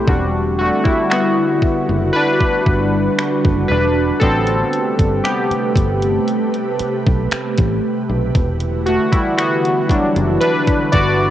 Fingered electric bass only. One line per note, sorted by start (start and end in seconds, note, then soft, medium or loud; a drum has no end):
0.08 0.69 E1 medium
0.86 muted fingered electric bass stroke soft
1.62 muted fingered electric bass stroke soft
1.89 2.09 F#1 medium
2.41 muted fingered electric bass stroke soft
2.67 3.07 G1 medium
3.45 3.65 F#1 medium
3.70 4.11 E1 medium
4.22 4.62 A1 loud
4.99 5.20 G1 medium
5.51 muted fingered electric bass stroke soft
5.76 6.17 G1 medium
6.80 muted fingered electric bass stroke soft
7.07 7.27 B1 medium
7.32 muted fingered electric bass stroke soft
7.59 7.79 A1 medium
8.09 8.30 B1 medium
8.35 8.97 E1 medium
9.13 muted fingered electric bass stroke soft
9.90 muted fingered electric bass stroke soft
10.16 10.37 F#1 medium
10.68 muted fingered electric bass stroke soft
10.94 11.30 G1 medium